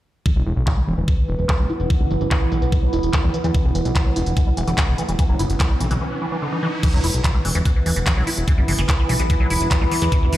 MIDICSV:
0, 0, Header, 1, 7, 480
1, 0, Start_track
1, 0, Tempo, 410959
1, 301, Time_signature, 4, 2, 24, 8
1, 12112, End_track
2, 0, Start_track
2, 0, Title_t, "Ambient pad"
2, 0, Program_c, 0, 92
2, 7981, Note_on_c, 0, 64, 90
2, 8557, Note_on_c, 0, 71, 84
2, 9686, Note_on_c, 0, 76, 89
2, 12112, Note_off_c, 0, 64, 0
2, 12112, Note_off_c, 0, 71, 0
2, 12112, Note_off_c, 0, 76, 0
2, 12112, End_track
3, 0, Start_track
3, 0, Title_t, "Synth drone"
3, 0, Program_c, 1, 95
3, 300, Note_on_c, 1, 52, 72
3, 300, Note_on_c, 1, 59, 71
3, 7021, Note_off_c, 1, 52, 0
3, 7021, Note_off_c, 1, 59, 0
3, 7981, Note_on_c, 1, 52, 72
3, 7981, Note_on_c, 1, 59, 74
3, 12112, Note_off_c, 1, 52, 0
3, 12112, Note_off_c, 1, 59, 0
3, 12112, End_track
4, 0, Start_track
4, 0, Title_t, "Acid bass"
4, 0, Program_c, 2, 38
4, 301, Note_on_c, 2, 52, 83
4, 356, Note_off_c, 2, 52, 0
4, 421, Note_on_c, 2, 54, 76
4, 503, Note_off_c, 2, 54, 0
4, 541, Note_on_c, 2, 64, 79
4, 574, Note_off_c, 2, 64, 0
4, 781, Note_on_c, 2, 52, 79
4, 836, Note_off_c, 2, 52, 0
4, 901, Note_on_c, 2, 55, 76
4, 934, Note_off_c, 2, 55, 0
4, 1020, Note_on_c, 2, 52, 77
4, 1076, Note_off_c, 2, 52, 0
4, 1141, Note_on_c, 2, 52, 107
4, 1174, Note_off_c, 2, 52, 0
4, 1261, Note_on_c, 2, 52, 82
4, 1294, Note_off_c, 2, 52, 0
4, 1501, Note_on_c, 2, 52, 77
4, 1556, Note_off_c, 2, 52, 0
4, 1621, Note_on_c, 2, 52, 79
4, 1654, Note_off_c, 2, 52, 0
4, 1741, Note_on_c, 2, 52, 87
4, 1796, Note_off_c, 2, 52, 0
4, 1861, Note_on_c, 2, 54, 80
4, 1944, Note_off_c, 2, 54, 0
4, 1981, Note_on_c, 2, 64, 77
4, 2014, Note_off_c, 2, 64, 0
4, 2221, Note_on_c, 2, 52, 85
4, 2276, Note_off_c, 2, 52, 0
4, 2341, Note_on_c, 2, 55, 77
4, 2374, Note_off_c, 2, 55, 0
4, 2461, Note_on_c, 2, 52, 77
4, 2516, Note_off_c, 2, 52, 0
4, 2581, Note_on_c, 2, 52, 103
4, 2614, Note_off_c, 2, 52, 0
4, 2701, Note_on_c, 2, 52, 81
4, 2734, Note_off_c, 2, 52, 0
4, 2941, Note_on_c, 2, 52, 80
4, 2996, Note_off_c, 2, 52, 0
4, 3061, Note_on_c, 2, 52, 83
4, 3094, Note_off_c, 2, 52, 0
4, 3181, Note_on_c, 2, 52, 80
4, 3236, Note_off_c, 2, 52, 0
4, 3301, Note_on_c, 2, 54, 70
4, 3383, Note_off_c, 2, 54, 0
4, 3421, Note_on_c, 2, 64, 76
4, 3454, Note_off_c, 2, 64, 0
4, 3661, Note_on_c, 2, 52, 87
4, 3716, Note_off_c, 2, 52, 0
4, 3781, Note_on_c, 2, 55, 75
4, 3814, Note_off_c, 2, 55, 0
4, 3901, Note_on_c, 2, 52, 78
4, 3956, Note_off_c, 2, 52, 0
4, 4021, Note_on_c, 2, 52, 101
4, 4054, Note_off_c, 2, 52, 0
4, 4140, Note_on_c, 2, 52, 83
4, 4174, Note_off_c, 2, 52, 0
4, 4380, Note_on_c, 2, 52, 78
4, 4436, Note_off_c, 2, 52, 0
4, 4500, Note_on_c, 2, 52, 83
4, 4534, Note_off_c, 2, 52, 0
4, 4620, Note_on_c, 2, 52, 78
4, 4675, Note_off_c, 2, 52, 0
4, 4740, Note_on_c, 2, 54, 81
4, 4823, Note_off_c, 2, 54, 0
4, 4861, Note_on_c, 2, 64, 77
4, 4894, Note_off_c, 2, 64, 0
4, 5100, Note_on_c, 2, 52, 82
4, 5156, Note_off_c, 2, 52, 0
4, 5220, Note_on_c, 2, 55, 76
4, 5254, Note_off_c, 2, 55, 0
4, 5340, Note_on_c, 2, 52, 80
4, 5396, Note_off_c, 2, 52, 0
4, 5460, Note_on_c, 2, 52, 104
4, 5494, Note_off_c, 2, 52, 0
4, 5580, Note_on_c, 2, 52, 88
4, 5614, Note_off_c, 2, 52, 0
4, 5820, Note_on_c, 2, 52, 81
4, 5876, Note_off_c, 2, 52, 0
4, 5940, Note_on_c, 2, 52, 77
4, 5974, Note_off_c, 2, 52, 0
4, 6060, Note_on_c, 2, 52, 85
4, 6115, Note_off_c, 2, 52, 0
4, 6180, Note_on_c, 2, 54, 78
4, 6263, Note_off_c, 2, 54, 0
4, 6300, Note_on_c, 2, 64, 79
4, 6333, Note_off_c, 2, 64, 0
4, 6540, Note_on_c, 2, 52, 80
4, 6596, Note_off_c, 2, 52, 0
4, 6660, Note_on_c, 2, 55, 82
4, 6694, Note_off_c, 2, 55, 0
4, 6780, Note_on_c, 2, 52, 79
4, 6835, Note_off_c, 2, 52, 0
4, 6901, Note_on_c, 2, 52, 105
4, 6934, Note_off_c, 2, 52, 0
4, 7021, Note_on_c, 2, 52, 84
4, 7054, Note_off_c, 2, 52, 0
4, 7261, Note_on_c, 2, 52, 76
4, 7316, Note_off_c, 2, 52, 0
4, 7381, Note_on_c, 2, 52, 76
4, 7436, Note_off_c, 2, 52, 0
4, 7501, Note_on_c, 2, 50, 89
4, 7556, Note_off_c, 2, 50, 0
4, 7621, Note_on_c, 2, 52, 77
4, 7676, Note_off_c, 2, 52, 0
4, 7741, Note_on_c, 2, 52, 101
4, 7796, Note_off_c, 2, 52, 0
4, 7981, Note_on_c, 2, 52, 84
4, 8036, Note_off_c, 2, 52, 0
4, 8101, Note_on_c, 2, 54, 78
4, 8183, Note_off_c, 2, 54, 0
4, 8221, Note_on_c, 2, 64, 77
4, 8254, Note_off_c, 2, 64, 0
4, 8461, Note_on_c, 2, 52, 79
4, 8516, Note_off_c, 2, 52, 0
4, 8581, Note_on_c, 2, 55, 79
4, 8614, Note_off_c, 2, 55, 0
4, 8701, Note_on_c, 2, 52, 81
4, 8756, Note_off_c, 2, 52, 0
4, 8820, Note_on_c, 2, 52, 109
4, 8854, Note_off_c, 2, 52, 0
4, 8941, Note_on_c, 2, 52, 77
4, 8974, Note_off_c, 2, 52, 0
4, 9180, Note_on_c, 2, 52, 76
4, 9236, Note_off_c, 2, 52, 0
4, 9301, Note_on_c, 2, 52, 77
4, 9334, Note_off_c, 2, 52, 0
4, 9420, Note_on_c, 2, 52, 88
4, 9476, Note_off_c, 2, 52, 0
4, 9540, Note_on_c, 2, 54, 74
4, 9623, Note_off_c, 2, 54, 0
4, 9660, Note_on_c, 2, 64, 76
4, 9693, Note_off_c, 2, 64, 0
4, 9900, Note_on_c, 2, 52, 83
4, 9956, Note_off_c, 2, 52, 0
4, 10020, Note_on_c, 2, 55, 75
4, 10053, Note_off_c, 2, 55, 0
4, 10140, Note_on_c, 2, 52, 82
4, 10196, Note_off_c, 2, 52, 0
4, 10261, Note_on_c, 2, 52, 104
4, 10294, Note_off_c, 2, 52, 0
4, 10380, Note_on_c, 2, 52, 83
4, 10414, Note_off_c, 2, 52, 0
4, 10620, Note_on_c, 2, 52, 78
4, 10676, Note_off_c, 2, 52, 0
4, 10740, Note_on_c, 2, 52, 84
4, 10774, Note_off_c, 2, 52, 0
4, 10861, Note_on_c, 2, 52, 82
4, 10916, Note_off_c, 2, 52, 0
4, 10981, Note_on_c, 2, 54, 79
4, 11063, Note_off_c, 2, 54, 0
4, 11101, Note_on_c, 2, 64, 75
4, 11134, Note_off_c, 2, 64, 0
4, 11341, Note_on_c, 2, 52, 88
4, 11396, Note_off_c, 2, 52, 0
4, 11461, Note_on_c, 2, 55, 78
4, 11494, Note_off_c, 2, 55, 0
4, 11581, Note_on_c, 2, 52, 80
4, 11636, Note_off_c, 2, 52, 0
4, 11701, Note_on_c, 2, 52, 101
4, 11734, Note_off_c, 2, 52, 0
4, 11821, Note_on_c, 2, 52, 87
4, 11854, Note_off_c, 2, 52, 0
4, 12061, Note_on_c, 2, 52, 81
4, 12112, Note_off_c, 2, 52, 0
4, 12112, End_track
5, 0, Start_track
5, 0, Title_t, "Analog synth bass"
5, 0, Program_c, 3, 38
5, 421, Note_on_c, 3, 28, 78
5, 500, Note_off_c, 3, 28, 0
5, 541, Note_on_c, 3, 28, 94
5, 621, Note_off_c, 3, 28, 0
5, 661, Note_on_c, 3, 35, 79
5, 740, Note_off_c, 3, 35, 0
5, 1021, Note_on_c, 3, 28, 93
5, 1101, Note_off_c, 3, 28, 0
5, 1141, Note_on_c, 3, 28, 81
5, 1221, Note_off_c, 3, 28, 0
5, 1501, Note_on_c, 3, 28, 95
5, 1581, Note_off_c, 3, 28, 0
5, 1621, Note_on_c, 3, 28, 80
5, 1700, Note_off_c, 3, 28, 0
5, 1861, Note_on_c, 3, 28, 74
5, 1941, Note_off_c, 3, 28, 0
5, 2101, Note_on_c, 3, 28, 83
5, 2181, Note_off_c, 3, 28, 0
5, 2341, Note_on_c, 3, 30, 78
5, 2421, Note_off_c, 3, 30, 0
5, 2461, Note_on_c, 3, 30, 94
5, 2541, Note_off_c, 3, 30, 0
5, 2581, Note_on_c, 3, 30, 80
5, 2661, Note_off_c, 3, 30, 0
5, 2941, Note_on_c, 3, 35, 88
5, 3021, Note_off_c, 3, 35, 0
5, 3061, Note_on_c, 3, 35, 82
5, 3141, Note_off_c, 3, 35, 0
5, 3421, Note_on_c, 3, 28, 94
5, 3501, Note_off_c, 3, 28, 0
5, 3541, Note_on_c, 3, 28, 80
5, 3621, Note_off_c, 3, 28, 0
5, 3781, Note_on_c, 3, 40, 77
5, 3861, Note_off_c, 3, 40, 0
5, 4021, Note_on_c, 3, 40, 86
5, 4101, Note_off_c, 3, 40, 0
5, 4261, Note_on_c, 3, 28, 77
5, 4341, Note_off_c, 3, 28, 0
5, 4381, Note_on_c, 3, 28, 95
5, 4461, Note_off_c, 3, 28, 0
5, 4501, Note_on_c, 3, 35, 83
5, 4581, Note_off_c, 3, 35, 0
5, 4861, Note_on_c, 3, 28, 91
5, 4941, Note_off_c, 3, 28, 0
5, 4981, Note_on_c, 3, 28, 82
5, 5060, Note_off_c, 3, 28, 0
5, 5341, Note_on_c, 3, 28, 99
5, 5420, Note_off_c, 3, 28, 0
5, 5461, Note_on_c, 3, 28, 82
5, 5541, Note_off_c, 3, 28, 0
5, 5701, Note_on_c, 3, 28, 76
5, 5781, Note_off_c, 3, 28, 0
5, 5941, Note_on_c, 3, 28, 83
5, 6020, Note_off_c, 3, 28, 0
5, 6181, Note_on_c, 3, 30, 80
5, 6260, Note_off_c, 3, 30, 0
5, 6301, Note_on_c, 3, 30, 92
5, 6381, Note_off_c, 3, 30, 0
5, 6421, Note_on_c, 3, 30, 86
5, 6500, Note_off_c, 3, 30, 0
5, 6781, Note_on_c, 3, 35, 91
5, 6860, Note_off_c, 3, 35, 0
5, 6901, Note_on_c, 3, 35, 82
5, 6980, Note_off_c, 3, 35, 0
5, 8101, Note_on_c, 3, 28, 82
5, 8180, Note_off_c, 3, 28, 0
5, 8221, Note_on_c, 3, 28, 97
5, 8300, Note_off_c, 3, 28, 0
5, 8341, Note_on_c, 3, 35, 78
5, 8420, Note_off_c, 3, 35, 0
5, 8701, Note_on_c, 3, 28, 90
5, 8781, Note_off_c, 3, 28, 0
5, 8821, Note_on_c, 3, 28, 82
5, 8901, Note_off_c, 3, 28, 0
5, 9181, Note_on_c, 3, 28, 98
5, 9260, Note_off_c, 3, 28, 0
5, 9301, Note_on_c, 3, 28, 87
5, 9380, Note_off_c, 3, 28, 0
5, 9541, Note_on_c, 3, 28, 79
5, 9620, Note_off_c, 3, 28, 0
5, 9781, Note_on_c, 3, 28, 85
5, 9860, Note_off_c, 3, 28, 0
5, 10021, Note_on_c, 3, 30, 78
5, 10101, Note_off_c, 3, 30, 0
5, 10141, Note_on_c, 3, 30, 96
5, 10220, Note_off_c, 3, 30, 0
5, 10261, Note_on_c, 3, 30, 84
5, 10341, Note_off_c, 3, 30, 0
5, 10621, Note_on_c, 3, 35, 89
5, 10700, Note_off_c, 3, 35, 0
5, 10741, Note_on_c, 3, 35, 82
5, 10820, Note_off_c, 3, 35, 0
5, 11101, Note_on_c, 3, 28, 93
5, 11181, Note_off_c, 3, 28, 0
5, 11221, Note_on_c, 3, 28, 79
5, 11300, Note_off_c, 3, 28, 0
5, 11461, Note_on_c, 3, 40, 74
5, 11541, Note_off_c, 3, 40, 0
5, 11701, Note_on_c, 3, 40, 86
5, 11781, Note_off_c, 3, 40, 0
5, 11941, Note_on_c, 3, 28, 78
5, 12021, Note_off_c, 3, 28, 0
5, 12061, Note_on_c, 3, 28, 96
5, 12112, Note_off_c, 3, 28, 0
5, 12112, End_track
6, 0, Start_track
6, 0, Title_t, "Riser"
6, 0, Program_c, 4, 103
6, 4141, Note_on_c, 4, 60, 73
6, 7981, Note_off_c, 4, 60, 0
6, 12112, End_track
7, 0, Start_track
7, 0, Title_t, "Drums"
7, 301, Note_on_c, 9, 36, 120
7, 418, Note_off_c, 9, 36, 0
7, 541, Note_on_c, 9, 42, 99
7, 657, Note_off_c, 9, 42, 0
7, 661, Note_on_c, 9, 42, 64
7, 778, Note_off_c, 9, 42, 0
7, 781, Note_on_c, 9, 36, 113
7, 781, Note_on_c, 9, 39, 107
7, 898, Note_off_c, 9, 36, 0
7, 898, Note_off_c, 9, 39, 0
7, 1021, Note_on_c, 9, 42, 91
7, 1138, Note_off_c, 9, 42, 0
7, 1141, Note_on_c, 9, 42, 68
7, 1257, Note_off_c, 9, 42, 0
7, 1261, Note_on_c, 9, 36, 113
7, 1378, Note_off_c, 9, 36, 0
7, 1501, Note_on_c, 9, 42, 94
7, 1617, Note_off_c, 9, 42, 0
7, 1621, Note_on_c, 9, 42, 67
7, 1737, Note_off_c, 9, 42, 0
7, 1740, Note_on_c, 9, 39, 126
7, 1741, Note_on_c, 9, 36, 115
7, 1857, Note_off_c, 9, 36, 0
7, 1857, Note_off_c, 9, 39, 0
7, 1980, Note_on_c, 9, 42, 92
7, 2097, Note_off_c, 9, 42, 0
7, 2101, Note_on_c, 9, 42, 69
7, 2217, Note_off_c, 9, 42, 0
7, 2221, Note_on_c, 9, 36, 121
7, 2221, Note_on_c, 9, 42, 66
7, 2337, Note_off_c, 9, 42, 0
7, 2338, Note_off_c, 9, 36, 0
7, 2461, Note_on_c, 9, 42, 98
7, 2577, Note_off_c, 9, 42, 0
7, 2581, Note_on_c, 9, 42, 67
7, 2697, Note_off_c, 9, 42, 0
7, 2701, Note_on_c, 9, 36, 117
7, 2701, Note_on_c, 9, 39, 118
7, 2817, Note_off_c, 9, 36, 0
7, 2817, Note_off_c, 9, 39, 0
7, 2941, Note_on_c, 9, 42, 93
7, 3058, Note_off_c, 9, 42, 0
7, 3061, Note_on_c, 9, 42, 66
7, 3177, Note_off_c, 9, 42, 0
7, 3181, Note_on_c, 9, 36, 114
7, 3181, Note_on_c, 9, 42, 63
7, 3297, Note_off_c, 9, 36, 0
7, 3298, Note_off_c, 9, 42, 0
7, 3421, Note_on_c, 9, 42, 90
7, 3537, Note_off_c, 9, 42, 0
7, 3541, Note_on_c, 9, 42, 69
7, 3657, Note_off_c, 9, 42, 0
7, 3661, Note_on_c, 9, 36, 118
7, 3661, Note_on_c, 9, 39, 124
7, 3661, Note_on_c, 9, 42, 65
7, 3777, Note_off_c, 9, 36, 0
7, 3778, Note_off_c, 9, 39, 0
7, 3778, Note_off_c, 9, 42, 0
7, 3901, Note_on_c, 9, 42, 91
7, 4017, Note_off_c, 9, 42, 0
7, 4021, Note_on_c, 9, 42, 67
7, 4138, Note_off_c, 9, 42, 0
7, 4141, Note_on_c, 9, 36, 118
7, 4141, Note_on_c, 9, 42, 60
7, 4257, Note_off_c, 9, 36, 0
7, 4258, Note_off_c, 9, 42, 0
7, 4381, Note_on_c, 9, 42, 91
7, 4497, Note_off_c, 9, 42, 0
7, 4501, Note_on_c, 9, 42, 62
7, 4617, Note_off_c, 9, 42, 0
7, 4620, Note_on_c, 9, 39, 110
7, 4620, Note_on_c, 9, 42, 56
7, 4621, Note_on_c, 9, 36, 122
7, 4737, Note_off_c, 9, 36, 0
7, 4737, Note_off_c, 9, 39, 0
7, 4737, Note_off_c, 9, 42, 0
7, 4860, Note_on_c, 9, 42, 90
7, 4977, Note_off_c, 9, 42, 0
7, 4980, Note_on_c, 9, 42, 64
7, 5097, Note_off_c, 9, 42, 0
7, 5100, Note_on_c, 9, 42, 65
7, 5101, Note_on_c, 9, 36, 122
7, 5217, Note_off_c, 9, 36, 0
7, 5217, Note_off_c, 9, 42, 0
7, 5340, Note_on_c, 9, 42, 88
7, 5457, Note_off_c, 9, 42, 0
7, 5460, Note_on_c, 9, 42, 61
7, 5577, Note_off_c, 9, 42, 0
7, 5580, Note_on_c, 9, 39, 126
7, 5580, Note_on_c, 9, 42, 61
7, 5581, Note_on_c, 9, 36, 124
7, 5697, Note_off_c, 9, 36, 0
7, 5697, Note_off_c, 9, 39, 0
7, 5697, Note_off_c, 9, 42, 0
7, 5820, Note_on_c, 9, 42, 90
7, 5937, Note_off_c, 9, 42, 0
7, 5940, Note_on_c, 9, 42, 66
7, 6057, Note_off_c, 9, 42, 0
7, 6060, Note_on_c, 9, 42, 61
7, 6061, Note_on_c, 9, 36, 118
7, 6177, Note_off_c, 9, 36, 0
7, 6177, Note_off_c, 9, 42, 0
7, 6300, Note_on_c, 9, 42, 92
7, 6417, Note_off_c, 9, 42, 0
7, 6420, Note_on_c, 9, 42, 62
7, 6537, Note_off_c, 9, 42, 0
7, 6540, Note_on_c, 9, 39, 109
7, 6540, Note_on_c, 9, 42, 59
7, 6541, Note_on_c, 9, 36, 121
7, 6657, Note_off_c, 9, 36, 0
7, 6657, Note_off_c, 9, 39, 0
7, 6657, Note_off_c, 9, 42, 0
7, 6780, Note_on_c, 9, 42, 87
7, 6897, Note_off_c, 9, 42, 0
7, 6901, Note_on_c, 9, 42, 63
7, 7017, Note_off_c, 9, 42, 0
7, 7981, Note_on_c, 9, 36, 114
7, 7981, Note_on_c, 9, 42, 64
7, 7981, Note_on_c, 9, 49, 95
7, 8098, Note_off_c, 9, 36, 0
7, 8098, Note_off_c, 9, 42, 0
7, 8098, Note_off_c, 9, 49, 0
7, 8221, Note_on_c, 9, 46, 111
7, 8338, Note_off_c, 9, 46, 0
7, 8341, Note_on_c, 9, 42, 70
7, 8458, Note_off_c, 9, 42, 0
7, 8461, Note_on_c, 9, 36, 114
7, 8461, Note_on_c, 9, 39, 117
7, 8461, Note_on_c, 9, 42, 66
7, 8578, Note_off_c, 9, 36, 0
7, 8578, Note_off_c, 9, 39, 0
7, 8578, Note_off_c, 9, 42, 0
7, 8701, Note_on_c, 9, 46, 109
7, 8818, Note_off_c, 9, 46, 0
7, 8821, Note_on_c, 9, 42, 69
7, 8938, Note_off_c, 9, 42, 0
7, 8941, Note_on_c, 9, 36, 115
7, 8941, Note_on_c, 9, 42, 65
7, 9058, Note_off_c, 9, 36, 0
7, 9058, Note_off_c, 9, 42, 0
7, 9181, Note_on_c, 9, 46, 108
7, 9298, Note_off_c, 9, 46, 0
7, 9301, Note_on_c, 9, 42, 71
7, 9418, Note_off_c, 9, 42, 0
7, 9421, Note_on_c, 9, 36, 125
7, 9421, Note_on_c, 9, 39, 124
7, 9421, Note_on_c, 9, 42, 71
7, 9538, Note_off_c, 9, 36, 0
7, 9538, Note_off_c, 9, 39, 0
7, 9538, Note_off_c, 9, 42, 0
7, 9661, Note_on_c, 9, 46, 107
7, 9777, Note_off_c, 9, 46, 0
7, 9781, Note_on_c, 9, 42, 74
7, 9898, Note_off_c, 9, 42, 0
7, 9901, Note_on_c, 9, 36, 127
7, 9901, Note_on_c, 9, 42, 62
7, 10017, Note_off_c, 9, 36, 0
7, 10017, Note_off_c, 9, 42, 0
7, 10141, Note_on_c, 9, 46, 113
7, 10258, Note_off_c, 9, 46, 0
7, 10261, Note_on_c, 9, 42, 67
7, 10378, Note_off_c, 9, 42, 0
7, 10381, Note_on_c, 9, 36, 117
7, 10381, Note_on_c, 9, 39, 118
7, 10381, Note_on_c, 9, 42, 61
7, 10498, Note_off_c, 9, 36, 0
7, 10498, Note_off_c, 9, 39, 0
7, 10498, Note_off_c, 9, 42, 0
7, 10621, Note_on_c, 9, 46, 105
7, 10737, Note_off_c, 9, 46, 0
7, 10741, Note_on_c, 9, 42, 67
7, 10858, Note_off_c, 9, 42, 0
7, 10861, Note_on_c, 9, 36, 121
7, 10861, Note_on_c, 9, 42, 66
7, 10978, Note_off_c, 9, 36, 0
7, 10978, Note_off_c, 9, 42, 0
7, 11100, Note_on_c, 9, 46, 107
7, 11217, Note_off_c, 9, 46, 0
7, 11221, Note_on_c, 9, 42, 65
7, 11338, Note_off_c, 9, 42, 0
7, 11341, Note_on_c, 9, 36, 125
7, 11341, Note_on_c, 9, 39, 124
7, 11341, Note_on_c, 9, 42, 68
7, 11458, Note_off_c, 9, 36, 0
7, 11458, Note_off_c, 9, 39, 0
7, 11458, Note_off_c, 9, 42, 0
7, 11581, Note_on_c, 9, 46, 108
7, 11698, Note_off_c, 9, 46, 0
7, 11701, Note_on_c, 9, 42, 67
7, 11817, Note_off_c, 9, 42, 0
7, 11821, Note_on_c, 9, 36, 125
7, 11821, Note_on_c, 9, 42, 63
7, 11937, Note_off_c, 9, 42, 0
7, 11938, Note_off_c, 9, 36, 0
7, 12061, Note_on_c, 9, 46, 118
7, 12112, Note_off_c, 9, 46, 0
7, 12112, End_track
0, 0, End_of_file